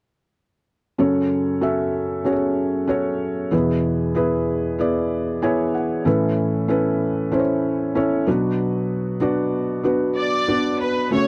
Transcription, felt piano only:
0.98 F#2 C#3 C#4 F#4 A4 C#5
1.61 C#4 F#4 A4 E5
2.25 C#4 F#4 G#4 C#5
2.32 A4
2.87 C#4 F#4 A4 C#5
3.51 E2 B2 B3 E4 G#4 B4
4.15 B3 E4 G#4 B4
4.79 B3 E4 G#4 D5
5.42 B3 E4 G#4 C#5 G#5
5.74 F#5
6.05 A2 E3 C#4 E4 A4 B4
6.68 C#4 E4 A4 B4
7.32 C#4 E4 A4 C5
7.40 C#5
7.95 C#4 E4 A4 C#5
8.26 B2 F#3 B3 D4 F#4 B4
9.20 B3 D4 F#4 D5
9.83 B3 D4 F#4 B4
10.47 B3 D4 F#4 B4
11.11 C#3 A3 C#4 F#4 A4

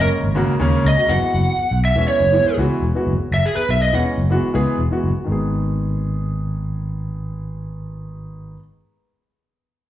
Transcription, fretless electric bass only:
0.23 G#1
0.48 muted fretless electric bass stroke
0.60 D#2
0.85 C#2
1.09 F#1
1.22 muted fretless electric bass stroke
1.34 F#1
1.59 muted fretless electric bass stroke
1.71 B1
1.96 E1
2.20 F#1
2.45 muted fretless electric bass stroke
2.58 C#2
2.82 E1
3.07 F#1
3.19 muted fretless electric bass stroke
3.31 F#1
3.57 muted fretless electric bass stroke
3.69 B1
3.93 E1
4.18 F#1
4.43 muted fretless electric bass stroke
4.55 C#2
4.79 E1
5.04 F#1
5.16 muted fretless electric bass stroke
5.28 G#1

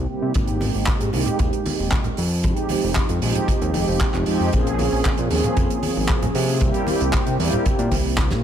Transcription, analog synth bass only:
0.09 C3
0.22 C3
0.35 G#1
0.75 G#1
1.01 G#2
1.13 C2
1.40 D#2
1.79 D#1
2.18 F2
2.84 F1
3.10 F2
3.22 A#1
3.62 D#2
3.74 F1
3.88 F1
4.14 F1
4.27 F2
4.40 F2
4.54 A#1
4.92 A#1
5.19 A#2
5.31 D#2
5.57 F2
5.96 G#1
6.35 C3
7.01 C2
7.27 C3
7.40 E2
7.79 A#2
7.92 C2
8.31 A#2

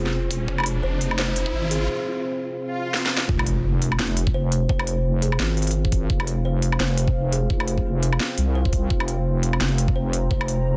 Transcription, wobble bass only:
Already playing: F1
0.27 E1
0.48 F1
0.83 F1
1.53 G#1
3.29 F1
3.99 F1
4.69 F1
5.40 G#1
6.10 F1
6.80 F1
7.50 F1
8.38 C2
8.90 F1
9.61 F1
10.31 F1

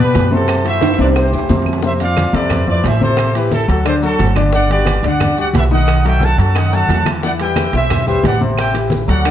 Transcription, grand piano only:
Already playing: B2 B3 B4
0.32 C3 C4 C5
0.65 E3 E4 F#4
0.99 C3 C4 C5
1.33 E3 E4 G4
1.50 C3 C4 C5
1.83 C3 C4 C5
2.00 F3 C4 F4
2.34 C3 C4 A4
2.67 F3 E4 F4
3.01 C3 C4 C5
3.35 E3 E4 G4
3.68 F#3 F#4 A4
3.85 D3 D4 D5
4.02 F#3 F#4 A4
4.36 D3 D4 D5
4.53 D3 D4 D5
4.70 G3 F#4 G4
5.04 D3 D4 D5
5.37 G3 F#4 G4
5.71 D#3 D#4 D#5
6.05 F#3 F#4 A4
6.38 F#3 F#4 A4
6.55 D#3 D#4 D#5
6.72 F#3 F#4 A4
7.06 E3 E4 E5
7.24 E3 E4 E5
7.40 G3 G4 B4
7.74 E3 E4 E5
8.07 G3 G4 B4
8.41 C3 C4 C5
8.74 E3 E4 G4
9.08 F#3 F#4 A4
9.25 D3 D4 D5

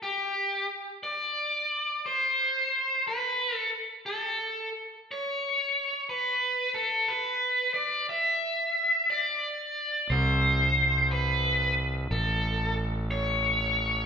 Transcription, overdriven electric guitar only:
0.03 G4
1.03 D5
2.06 C5
3.08 B4
3.55 A4
4.06 A4
5.11 C#5
6.09 B4
6.75 A4
7.08 B4
7.74 D5
8.09 E5
9.10 D5
10.10 C5
11.11 B4
12.11 A4
13.11 C#5

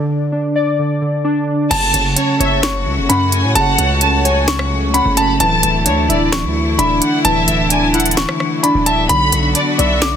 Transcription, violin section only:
1.71 A5
2.17 C#5
2.40 E5
3.09 F#5
3.32 G#5
3.55 F#5
4.02 A5
4.25 G#5
4.94 F#5
5.17 B5
5.40 A5
5.86 C#5
6.09 D5
6.79 E5
7.01 F#5
7.25 E5
7.71 G#5
7.94 F#5
8.86 E5
9.09 B5
9.56 D5
9.79 E5

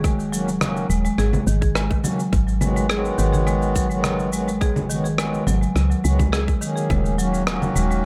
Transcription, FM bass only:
Already playing: D#1
0.90 D#1
1.18 G#1
1.47 G#1
2.33 G#1
3.19 G#1
5.47 G#1
5.76 C#2
6.05 C#2
6.90 D#1
7.76 D#1

